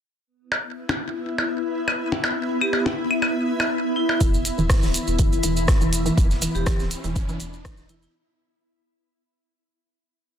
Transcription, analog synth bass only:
0, 0, Header, 1, 2, 480
1, 0, Start_track
1, 0, Tempo, 491803
1, 265, Time_signature, 4, 2, 24, 8
1, 10139, End_track
2, 0, Start_track
2, 0, Title_t, "Analog synth bass"
2, 0, Program_c, 0, 38
2, 4106, Note_on_c, 0, 28, 92
2, 4395, Note_off_c, 0, 28, 0
2, 4473, Note_on_c, 0, 28, 98
2, 4616, Note_off_c, 0, 28, 0
2, 4714, Note_on_c, 0, 26, 79
2, 4856, Note_off_c, 0, 26, 0
2, 4954, Note_on_c, 0, 28, 90
2, 5237, Note_off_c, 0, 28, 0
2, 5306, Note_on_c, 0, 28, 99
2, 5595, Note_off_c, 0, 28, 0
2, 5673, Note_on_c, 0, 28, 79
2, 5957, Note_off_c, 0, 28, 0
2, 6027, Note_on_c, 0, 28, 96
2, 6316, Note_off_c, 0, 28, 0
2, 6394, Note_on_c, 0, 28, 101
2, 6536, Note_off_c, 0, 28, 0
2, 6634, Note_on_c, 0, 26, 82
2, 6776, Note_off_c, 0, 26, 0
2, 6874, Note_on_c, 0, 28, 98
2, 7157, Note_off_c, 0, 28, 0
2, 7228, Note_on_c, 0, 28, 98
2, 7516, Note_off_c, 0, 28, 0
2, 7594, Note_on_c, 0, 28, 82
2, 7877, Note_off_c, 0, 28, 0
2, 10139, End_track
0, 0, End_of_file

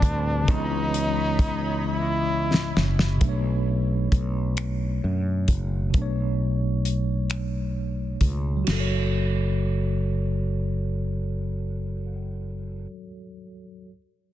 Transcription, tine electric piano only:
0, 0, Header, 1, 2, 480
1, 0, Start_track
1, 0, Key_signature, 3, "minor"
1, 0, Tempo, 909091
1, 255, Time_signature, 6, 3, 24, 8
1, 7566, End_track
2, 0, Start_track
2, 0, Title_t, "Tine electric piano"
2, 0, Program_c, 0, 4
2, 0, Control_c, 0, 64, 127
2, 0, Note_on_c, 0, 45, 72
2, 0, Note_on_c, 0, 55, 66
2, 0, Note_on_c, 0, 60, 67
2, 0, Note_on_c, 0, 71, 80
2, 221, Note_off_c, 0, 45, 0
2, 231, Note_off_c, 0, 55, 0
2, 231, Note_on_c, 0, 49, 71
2, 242, Note_off_c, 0, 60, 0
2, 251, Note_on_c, 0, 59, 61
2, 252, Note_off_c, 0, 71, 0
2, 261, Control_c, 0, 64, 0
2, 271, Note_on_c, 0, 52, 66
2, 292, Note_on_c, 0, 75, 74
2, 358, Control_c, 0, 64, 127
2, 1662, Note_off_c, 0, 49, 0
2, 1672, Note_off_c, 0, 59, 0
2, 1674, Note_on_c, 0, 47, 65
2, 1682, Note_off_c, 0, 52, 0
2, 1692, Note_off_c, 0, 75, 0
2, 1694, Note_on_c, 0, 57, 64
2, 1701, Control_c, 0, 64, 0
2, 1715, Note_on_c, 0, 62, 62
2, 1736, Note_on_c, 0, 73, 71
2, 1784, Control_c, 0, 64, 127
2, 3103, Note_off_c, 0, 47, 0
2, 3114, Note_off_c, 0, 57, 0
2, 3115, Note_on_c, 0, 47, 64
2, 3124, Note_off_c, 0, 62, 0
2, 3134, Note_off_c, 0, 73, 0
2, 3136, Note_on_c, 0, 57, 57
2, 3158, Note_on_c, 0, 62, 60
2, 3177, Note_on_c, 0, 73, 73
2, 4523, Note_on_c, 0, 54, 60
2, 4544, Note_off_c, 0, 47, 0
2, 4554, Note_off_c, 0, 57, 0
2, 4565, Note_off_c, 0, 62, 0
2, 4565, Note_on_c, 0, 66, 57
2, 4575, Note_off_c, 0, 73, 0
2, 4583, Control_c, 0, 64, 0
2, 4605, Note_on_c, 0, 69, 56
2, 4647, Note_on_c, 0, 73, 67
2, 4685, Control_c, 0, 64, 127
2, 6760, Note_off_c, 0, 54, 0
2, 6781, Note_off_c, 0, 66, 0
2, 6801, Note_off_c, 0, 69, 0
2, 6822, Note_off_c, 0, 73, 0
2, 7341, Control_c, 0, 64, 0
2, 7566, End_track
0, 0, End_of_file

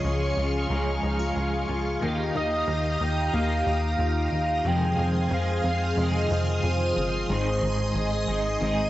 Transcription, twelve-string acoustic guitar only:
0, 0, Header, 1, 2, 480
1, 0, Start_track
1, 0, Tempo, 659341
1, 1471, Time_signature, 4, 2, 24, 8
1, 6478, End_track
2, 0, Start_track
2, 0, Title_t, "Twelve-string acoustic guitar"
2, 0, Program_c, 0, 25
2, 0, Note_on_c, 0, 49, 85
2, 0, Note_on_c, 0, 65, 60
2, 33, Note_on_c, 0, 68, 70
2, 268, Note_off_c, 0, 65, 0
2, 271, Note_on_c, 0, 65, 63
2, 744, Note_off_c, 0, 65, 0
2, 747, Note_on_c, 0, 63, 61
2, 867, Note_off_c, 0, 63, 0
2, 867, Note_on_c, 0, 65, 53
2, 977, Note_off_c, 0, 68, 0
2, 986, Note_on_c, 0, 68, 63
2, 1218, Note_off_c, 0, 65, 0
2, 1226, Note_on_c, 0, 65, 58
2, 1468, Note_off_c, 0, 49, 0
2, 1471, Note_on_c, 0, 51, 83
2, 1517, Note_off_c, 0, 68, 0
2, 1709, Note_off_c, 0, 65, 0
2, 1712, Note_on_c, 0, 63, 62
2, 1950, Note_on_c, 0, 65, 64
2, 2187, Note_off_c, 0, 63, 0
2, 2190, Note_on_c, 0, 63, 66
2, 2426, Note_on_c, 0, 58, 67
2, 2666, Note_off_c, 0, 63, 0
2, 2669, Note_on_c, 0, 63, 58
2, 2909, Note_off_c, 0, 65, 0
2, 2911, Note_on_c, 0, 65, 66
2, 3151, Note_off_c, 0, 63, 0
2, 3153, Note_on_c, 0, 63, 59
2, 3389, Note_on_c, 0, 41, 88
2, 3411, Note_off_c, 0, 51, 0
2, 3437, Note_off_c, 0, 58, 0
2, 3630, Note_off_c, 0, 63, 0
2, 3632, Note_on_c, 0, 60, 61
2, 3871, Note_off_c, 0, 65, 0
2, 3874, Note_on_c, 0, 65, 71
2, 4109, Note_off_c, 0, 60, 0
2, 4112, Note_on_c, 0, 60, 62
2, 4350, Note_on_c, 0, 56, 66
2, 4589, Note_off_c, 0, 60, 0
2, 4592, Note_on_c, 0, 60, 60
2, 4818, Note_off_c, 0, 65, 0
2, 4826, Note_on_c, 0, 65, 68
2, 5064, Note_off_c, 0, 60, 0
2, 5067, Note_on_c, 0, 60, 65
2, 5306, Note_off_c, 0, 41, 0
2, 5309, Note_on_c, 0, 44, 86
2, 5357, Note_off_c, 0, 65, 0
2, 5545, Note_off_c, 0, 60, 0
2, 5548, Note_on_c, 0, 63, 58
2, 5789, Note_on_c, 0, 68, 71
2, 6022, Note_off_c, 0, 63, 0
2, 6031, Note_on_c, 0, 63, 64
2, 6265, Note_off_c, 0, 56, 0
2, 6267, Note_on_c, 0, 60, 68
2, 6478, Note_off_c, 0, 44, 0
2, 6478, Note_off_c, 0, 60, 0
2, 6478, Note_off_c, 0, 63, 0
2, 6478, Note_off_c, 0, 68, 0
2, 6478, End_track
0, 0, End_of_file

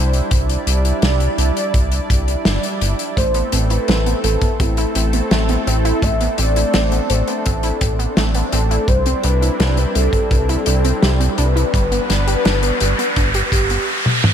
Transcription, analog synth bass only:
0, 0, Header, 1, 2, 480
1, 0, Start_track
1, 0, Key_signature, 0, "minor"
1, 0, Tempo, 714286
1, 210, Time_signature, 4, 2, 24, 8
1, 9634, End_track
2, 0, Start_track
2, 0, Title_t, "Analog synth bass"
2, 0, Program_c, 0, 38
2, 0, Note_on_c, 0, 36, 92
2, 143, Note_off_c, 0, 36, 0
2, 210, Note_on_c, 0, 36, 94
2, 384, Note_off_c, 0, 36, 0
2, 448, Note_on_c, 0, 36, 89
2, 623, Note_off_c, 0, 36, 0
2, 688, Note_on_c, 0, 36, 87
2, 863, Note_off_c, 0, 36, 0
2, 928, Note_on_c, 0, 36, 97
2, 1016, Note_off_c, 0, 36, 0
2, 1169, Note_on_c, 0, 36, 92
2, 1344, Note_off_c, 0, 36, 0
2, 1411, Note_on_c, 0, 36, 80
2, 1584, Note_off_c, 0, 36, 0
2, 1649, Note_on_c, 0, 31, 94
2, 1737, Note_off_c, 0, 31, 0
2, 1890, Note_on_c, 0, 31, 97
2, 1977, Note_off_c, 0, 31, 0
2, 2130, Note_on_c, 0, 33, 95
2, 2304, Note_off_c, 0, 33, 0
2, 2370, Note_on_c, 0, 33, 89
2, 2544, Note_off_c, 0, 33, 0
2, 2610, Note_on_c, 0, 33, 85
2, 2784, Note_off_c, 0, 33, 0
2, 2849, Note_on_c, 0, 33, 94
2, 2936, Note_off_c, 0, 33, 0
2, 3090, Note_on_c, 0, 33, 89
2, 3264, Note_off_c, 0, 33, 0
2, 3329, Note_on_c, 0, 33, 79
2, 3503, Note_off_c, 0, 33, 0
2, 3570, Note_on_c, 0, 33, 98
2, 3744, Note_off_c, 0, 33, 0
2, 3810, Note_on_c, 0, 33, 92
2, 3984, Note_off_c, 0, 33, 0
2, 4048, Note_on_c, 0, 33, 93
2, 4223, Note_off_c, 0, 33, 0
2, 4290, Note_on_c, 0, 33, 89
2, 4464, Note_off_c, 0, 33, 0
2, 4530, Note_on_c, 0, 33, 85
2, 4704, Note_off_c, 0, 33, 0
2, 4770, Note_on_c, 0, 33, 98
2, 4857, Note_off_c, 0, 33, 0
2, 5016, Note_on_c, 0, 33, 91
2, 5187, Note_off_c, 0, 33, 0
2, 5250, Note_on_c, 0, 33, 76
2, 5424, Note_off_c, 0, 33, 0
2, 5490, Note_on_c, 0, 33, 100
2, 5664, Note_off_c, 0, 33, 0
2, 5730, Note_on_c, 0, 33, 93
2, 5904, Note_off_c, 0, 33, 0
2, 5967, Note_on_c, 0, 36, 95
2, 6142, Note_off_c, 0, 36, 0
2, 6210, Note_on_c, 0, 36, 86
2, 6384, Note_off_c, 0, 36, 0
2, 6450, Note_on_c, 0, 36, 85
2, 6624, Note_off_c, 0, 36, 0
2, 6691, Note_on_c, 0, 36, 98
2, 6777, Note_off_c, 0, 36, 0
2, 6928, Note_on_c, 0, 36, 90
2, 7103, Note_off_c, 0, 36, 0
2, 7169, Note_on_c, 0, 36, 78
2, 7344, Note_off_c, 0, 36, 0
2, 7410, Note_on_c, 0, 36, 102
2, 7584, Note_off_c, 0, 36, 0
2, 7650, Note_on_c, 0, 36, 88
2, 7824, Note_off_c, 0, 36, 0
2, 7887, Note_on_c, 0, 31, 95
2, 8063, Note_off_c, 0, 31, 0
2, 8129, Note_on_c, 0, 31, 92
2, 8303, Note_off_c, 0, 31, 0
2, 8369, Note_on_c, 0, 31, 88
2, 8543, Note_off_c, 0, 31, 0
2, 8608, Note_on_c, 0, 31, 96
2, 8696, Note_off_c, 0, 31, 0
2, 8847, Note_on_c, 0, 31, 102
2, 9023, Note_off_c, 0, 31, 0
2, 9085, Note_on_c, 0, 31, 78
2, 9262, Note_off_c, 0, 31, 0
2, 9634, End_track
0, 0, End_of_file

